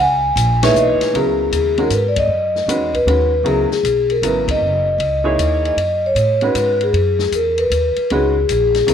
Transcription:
Already playing: C#2
0.02 G#5
0.36 A#1, hi-hat pedal, ride
0.62 A#2 E3 D#4 G#4 B4 C#5 E5, snare, ride
0.74 B1, hi-hat pedal
0.79 D#5
1.00 muted upright bass stroke, snare, ride
1.14 C#2 C#3 F#3 B3 E4 G#4 A#4, ride
1.52 D#2 G#4, hi-hat pedal, ride
1.77 D#3 G#3 C#4 F#4 A#4, ride
1.90 G#2 B4, hi-hat pedal, ride
2.08 D5
2.16 D#5, kick, ride
2.28 F#2
2.55 snare
2.66 E2 D#3 G#3 C#4 F#4 B4, hi-hat pedal, ride
2.94 B4, kick, ride
3.06 D#2 D#3 G#3 C#4 F#4 B4, ride
3.43 C#2 C#3 F#3 B3 E4 G#4 A#4, ride
3.70 G#4, muted upright bass stroke, snare
3.83 B1 G#4, hi-hat pedal, ride
4.10 A#4, ride
4.22 G#1 C#3 F#3 B3 E4 A#4 B4, hi-hat pedal, ride
4.48 D#5, kick, ride
4.59 F#1
4.98 C#2, ride
5.24 A#3 D#4 E4 G#4 C#5
5.38 D#2, hi-hat pedal, ride
5.65 D#5, ride
5.76 F#2, ride
6.06 C#5
6.15 A2, hi-hat pedal, ride
6.41 D#3 G#3 C#4 F#4 B4, ride
6.45 B4
6.54 G#2 B4, hi-hat pedal, ride
6.81 G#4, ride
6.93 F#2, ride
7.19 snare
7.32 E2 A#4, hi-hat pedal, ride
7.58 B4, ride
7.70 D#2, hi-hat pedal, ride
7.96 muted upright bass stroke, ride
8.10 C#2 D#3 G#3 C#4 F#4 G#4 B4, ride
8.49 A#1 G#4, hi-hat pedal, ride
8.74 G#4, snare, ride
8.87 B1 C#3 F#3 B3 E4 G#4 A#4, hi-hat pedal, ride

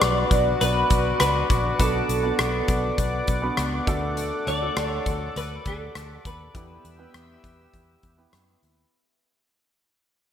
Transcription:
Already playing: F#3 B3 D4 F#4 B4 D5 F#5 D6
0.01 B1, cross-stick, closed hi-hat
0.31 B1, kick, closed hi-hat
0.61 B1 B4, closed hi-hat
0.90 B1, kick, closed hi-hat
1.20 C#2 B4, cross-stick, closed hi-hat
1.50 A#1, kick, closed hi-hat
1.79 B1 B3 D4 F#4 A4 B4, kick, closed hi-hat
2.09 B1, closed hi-hat
2.23 B3 D4 F#4 B4
2.39 B1, cross-stick, closed hi-hat
2.68 B1, kick, closed hi-hat
2.98 B1, kick, closed hi-hat
3.27 B1, kick, closed hi-hat
3.42 B3 D4 F#4 B4
3.57 C#2, cross-stick, closed hi-hat
3.87 D2 A3 D4 F#4 A4, kick, closed hi-hat
4.17 closed hi-hat
4.46 D2 A3 D4 F#4 A4 D5, closed hi-hat
4.61 A3 D4 F#4 A4
4.77 D2, cross-stick, closed hi-hat
4.87 C#5
5.06 D2, kick, closed hi-hat
5.36 D2 B4, closed hi-hat
5.65 D2 A4, kick, closed hi-hat
5.95 D2, cross-stick, closed hi-hat
6.25 D#2 B4, kick, closed hi-hat
6.54 E2 G3 B3 E4 G4 B4 E5 G5 E6, kick, closed hi-hat
6.84 E2, closed hi-hat
6.99 B3 E4 G4 B4
7.14 E2, cross-stick, closed hi-hat
7.44 E2, kick, closed hi-hat
7.74 E2, kick, closed hi-hat
8.03 E2, kick, closed hi-hat
8.17 B3 E4 G4 B4
8.33 F#2, cross-stick, closed hi-hat
8.63 D#2, closed hi-hat

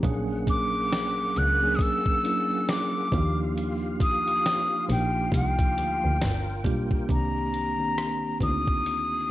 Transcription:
0.03 A#1 F#3 A#3 C#4 D4 G#4 F#5, kick, closed hi-hat
0.47 D6, kick, closed hi-hat
0.93 snare, closed hi-hat
1.36 C#2 F#6, closed hi-hat
1.61 F#3 A#3 C#4 D4 G#4
1.76 D#6, kick
1.81 E6, closed hi-hat
2.06 kick
2.23 F#3 A#3 C#4 D4 E4, closed hi-hat
2.69 D6, snare, closed hi-hat
3.11 D#2 F3 A#3 D4 D#4 F4 F#4 G4 F5, kick, closed hi-hat
3.20 G4
3.57 closed hi-hat
4.00 D#6, kick, closed hi-hat
4.28 closed hi-hat
4.46 snare, closed hi-hat
4.88 A#1 F3 A#3 D4 D#4 G4, open hi-hat
4.92 G5
5.32 C2, kick, closed hi-hat
5.36 G5
5.59 kick, closed hi-hat
5.78 D2, closed hi-hat
6.04 D2
6.21 G1 F4 A#4 G5, snare, closed hi-hat
6.64 B1 G3 A#3 D4 F4 G4, kick, closed hi-hat
6.91 kick
7.08 C2 D#3 A#3 C4 D4 G4 A#5, kick, closed hi-hat
7.54 closed hi-hat
7.78 D#3 A#3 C4 D4 G4
7.98 cross-stick, closed hi-hat
8.40 D2 A#3 C4 D4 D#4 F4 D#6, kick, closed hi-hat
8.67 kick
8.86 closed hi-hat

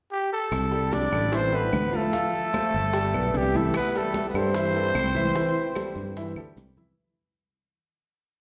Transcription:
0.12 G4
0.33 A4
0.52 C2, high bongo, high conga, claves, maracas
0.71 G3 G4 A4, high bongo, high conga
0.93 D4 D5, high bongo, high conga, maracas
1.12 A1 G3 G4 A4, claves, maracas
1.32 E3 C4 E4 C5 E5, high bongo, high conga, maracas
1.52 G3 B3 G4 A4 B4, high bongo, high conga
1.73 D2, high bongo, low bongo, high conga, claves, maracas
1.92 F3 A3 F4 A4 F5, high bongo, high conga, maracas
2.12 F3 F4 F5, high bongo, high conga, maracas
2.33 high bongo, high conga
2.53 A3 A4 C5, high bongo, high conga, claves, maracas
2.74 G1, high conga, maracas
2.93 G3 G4 G5, high bongo, high conga, maracas
3.14 B1 B3 B4 D5, high bongo, high conga, claves
3.34 C2 G3 G4, high bongo, low bongo, high conga, maracas
3.54 E3 A3 E4 A4 E5, high bongo, high conga, maracas
3.74 B4, high bongo, high conga, claves, maracas
3.78 B3
3.94 G3 A3 G4 A4, high bongo, high conga, maracas
4.14 high bongo, high conga, maracas
4.28 B3 B4
4.34 G2 G3 C4 G4 A4 C5, claves, maracas
4.55 E3 E4 E5, high bongo, high conga, maracas
4.75 G3 G4 A4, high bongo, high conga
4.95 C2, high bongo, low bongo, high conga, claves, maracas
5.15 E3 E4 E5, high bongo, high conga, maracas
5.35 E3 E4 E5, high bongo, high conga, maracas
5.56 high bongo, high conga
5.75 G3 G4 A4, high bongo, high conga, claves, maracas
5.96 G2, high conga, maracas
6.17 E3 E4 E5, high bongo, high conga, maracas
6.36 D2 G3 G4 A4, high bongo, high conga, claves
6.57 C2, high bongo, low bongo, high conga, maracas
6.77 E3 E4 E5, high bongo, low conga, maracas

